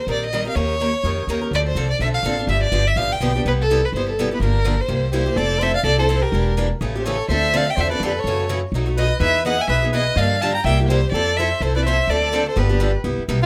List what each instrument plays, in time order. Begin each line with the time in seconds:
0.07 upright bass A#1, steel-string acoustic guitar D#3 G3 C4 G4 A#4
0.12 violin D5
0.26 violin D#5
0.33 steel-string acoustic guitar D#3 G3 C4 G4 A#4
0.45 steel-string acoustic guitar C4 G4 A#4, violin F5
0.55 upright bass D#2, steel-string acoustic guitar D#3 A#3 C#4 G4 A#4, violin C#5
0.80 steel-string acoustic guitar D#3 A#3 C#4 G4 A#4
1.03 upright bass F2, steel-string acoustic guitar D#3 A#3 C#4 G4 A#4
1.27 upright bass D#2, steel-string acoustic guitar D#3 A#3 C#4 G4 A#4
1.41 steel-string acoustic guitar C#4 G4 A#4
1.51 upright bass D2, steel-string acoustic guitar D3 F3 C4 D4 A4, violin D5
1.67 violin C5
1.75 upright bass C2, steel-string acoustic guitar D3 F3 C4 D4 A4
1.90 violin D5
1.99 upright bass B1, steel-string acoustic guitar D3 F3 C4 D4 A4, violin E5
2.14 violin F5
2.23 upright bass A1, steel-string acoustic guitar D3 F3 C4 D4 A4
2.38 steel-string acoustic guitar C4 D4 A4
2.47 upright bass G1, steel-string acoustic guitar D3 F3 B3 D4 G4, violin E5
2.63 violin D5
2.72 upright bass G1, steel-string acoustic guitar D3 F3 B3 D4 G4
2.87 violin E5
2.96 upright bass A1, steel-string acoustic guitar D3 F3 B3 D4 G4, violin F5
3.12 violin G5
3.20 upright bass B1, steel-string acoustic guitar D3 F3 B3 D4 G4
3.36 steel-string acoustic guitar B3 D4 G4
3.45 upright bass C2, steel-string acoustic guitar C3 G3 B3 E4 G4, violin B4
3.61 violin A4
3.70 steel-string acoustic guitar C3 G3 B3 E4 G4
3.85 violin B4
3.92 upright bass G1, steel-string acoustic guitar C3 G3 B3 E4, violin C5
3.97 steel-string acoustic guitar G4
4.10 violin A4
4.19 steel-string acoustic guitar C3 G3 B3 E4 G4
4.31 steel-string acoustic guitar B3 E4 G4, violin B4
4.40 upright bass G1, steel-string acoustic guitar D3 F3 A#3 D4 G4, violin A#4
4.65 steel-string acoustic guitar D3 F3 A#3 D4 G4
4.81 violin C5
4.88 upright bass C2, steel-string acoustic guitar C3 G3 A#3 E4 G4
5.11 steel-string acoustic guitar C3 G3 A#3 E4 G4, soprano saxophone G4, violin C5
5.26 steel-string acoustic guitar A#3 E4 G4
5.36 upright bass F1, steel-string acoustic guitar F3 C4 E4 A4, soprano saxophone A4, violin D5
5.59 steel-string acoustic guitar F3 C4 E4 A4, soprano saxophone C5, violin E5
5.74 soprano saxophone D5, violin F5
5.83 upright bass C2, steel-string acoustic guitar F3 C4 E4 A4, soprano saxophone A4, violin D5
5.98 steel-string acoustic guitar C4 E4 A4, soprano saxophone A4, violin C5
6.09 steel-string acoustic guitar F3 C4 E4 A4
6.22 soprano saxophone G4, violin A#4
6.32 upright bass E1, steel-string acoustic guitar E3 A#3 D4 G4
6.57 steel-string acoustic guitar E3 A#3 D4 G4
6.81 upright bass A1, steel-string acoustic guitar C#3 E3 A3 C#4 G4
6.95 steel-string acoustic guitar A3 C#4 G4, soprano saxophone G4
7.00 violin C5
7.04 steel-string acoustic guitar C#3 E3 A3 C#4 G4, soprano saxophone A4, violin C#5
7.29 upright bass D2, steel-string acoustic guitar D3 F3 C4 D4 A4, soprano saxophone C5, violin E5
7.54 steel-string acoustic guitar D3 F3 C4 D4 A4, soprano saxophone D5, violin F5
7.67 soprano saxophone E5, violin G5
7.76 upright bass E2, steel-string acoustic guitar D3 F3 C4 D4 A4, soprano saxophone C5
7.80 violin E5
7.90 steel-string acoustic guitar C4 D4 A4, soprano saxophone B4, violin D5
8.00 upright bass F2, steel-string acoustic guitar D3 F3 C4 D4 A4
8.05 soprano saxophone G4, violin B4
8.12 soprano saxophone A4
8.19 violin C#5
8.24 upright bass F#2, steel-string acoustic guitar C#3 E3 A3 C#4
8.28 steel-string acoustic guitar F#4
8.49 steel-string acoustic guitar C#3 E3 A3 C#4 F#4
8.72 upright bass B1, steel-string acoustic guitar B2 F#3 A3 D#4 F#4
8.86 steel-string acoustic guitar A3 D#4 F#4
8.97 steel-string acoustic guitar B2 F#3 A3 D#4 F#4, soprano saxophone B4, violin D#5
9.20 upright bass E2, steel-string acoustic guitar E3 B3 D#4 G#4, soprano saxophone B4, violin E5
9.45 steel-string acoustic guitar E3 B3 D#4 G#4, soprano saxophone D#5, violin F#5
9.58 soprano saxophone E5, violin G#5
9.68 upright bass B1, steel-string acoustic guitar E3 B3 D#4 G#4, soprano saxophone B4, violin E5
9.82 steel-string acoustic guitar B3 D#4 G#4
9.93 steel-string acoustic guitar E3 B3 D#4 G#4, soprano saxophone B4, violin D#5
10.16 upright bass G2, steel-string acoustic guitar D3 F3 A#3 D4 G4, soprano saxophone D5, violin F5
10.41 steel-string acoustic guitar D3 F3 A#3 D4 G4, soprano saxophone F5, violin A5
10.54 soprano saxophone G5, violin A#5
10.64 upright bass C2, steel-string acoustic guitar C3 G3 A#3 E4 G4, soprano saxophone E5, violin G5
10.80 steel-string acoustic guitar A#3 E4 G4
10.88 steel-string acoustic guitar C3 G3 A#3 E4 G4, soprano saxophone G4, violin C5
11.12 upright bass F2, steel-string acoustic guitar F3 C4 E4 A4, soprano saxophone A4, violin D5
11.37 steel-string acoustic guitar F3 C4 E4 A4, soprano saxophone C5, violin E5
11.61 upright bass C2, steel-string acoustic guitar F3 C4 E4 A4, soprano saxophone A4, violin C5
11.75 steel-string acoustic guitar C4 E4 A4, soprano saxophone B4, violin D5
11.85 steel-string acoustic guitar F3 C4 E4 A4, soprano saxophone C5, violin E5
12.07 upright bass D2, steel-string acoustic guitar D3 F3 C4 D4, soprano saxophone A4, violin D5
12.12 steel-string acoustic guitar A4
12.32 steel-string acoustic guitar D3 F3 C4 D4 A4
12.48 soprano saxophone A4, violin C5
12.56 upright bass G1, steel-string acoustic guitar D3 F3 B3 D4 G4, soprano saxophone G4, violin B4
12.69 steel-string acoustic guitar B3 D4 G4
12.80 steel-string acoustic guitar D3 F3 B3 D4 G4
13.04 upright bass C2, steel-string acoustic guitar C3 G3 B3 E4 G4
13.18 muted upright bass stroke
13.28 upright bass B1, steel-string acoustic guitar C3 G3 B3 E4 G4
13.43 soprano saxophone F4